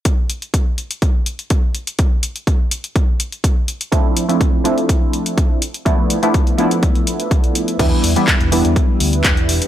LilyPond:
<<
  \new Staff \with { instrumentName = "Analog polysynth" } { \time 4/4 \key d \dorian \tempo 4 = 124 r1 | r1 | <f a c' d' e'>8. <f a c' d' e'>8. <f a c' d' e'>2 r8 | <f a b d' e'>8. <f a b d' e'>8. <f a b d' e'>2~ <f a b d' e'>8 |
<e g b d' e'>8. <e g b d' e'>8. <e g b d' e'>2~ <e g b d' e'>8 | }
  \new Staff \with { instrumentName = "Fingered electric bass" } { \clef bass \time 4/4 \key d \dorian r1 | r1 | r1 | r1 |
e,16 r16 e,16 r8 e,,8 e,16 r8 d,8 r4 | }
  \new DrumStaff \with { instrumentName = "Drums" } \drummode { \time 4/4 <hh bd>8 hh16 hh16 <hh bd>8 hh16 hh16 <hh bd>8 hh16 hh16 <hh bd>8 hh16 hh16 | <hh bd>8 hh16 hh16 <hh bd>8 hh16 hh16 <hh bd>8 hh16 hh16 <hh bd>8 hh16 hh16 | <hh bd>8 hh16 hh16 <hh bd>8 hh16 hh16 <hh bd>8 hh16 hh16 <hh bd>8 hh16 hh16 | <hh bd>8 hh16 hh16 <hh bd>16 hh16 hh16 hh16 <hh bd>16 hh16 hh16 hh16 <hh bd>16 hh16 hh16 hh16 |
<cymc hh bd>8 hho16 hh16 <hc hh bd>16 hh16 hho16 hh16 <hh bd>8 hho16 hh16 <hc hh bd>16 hh16 hho16 hh16 | }
>>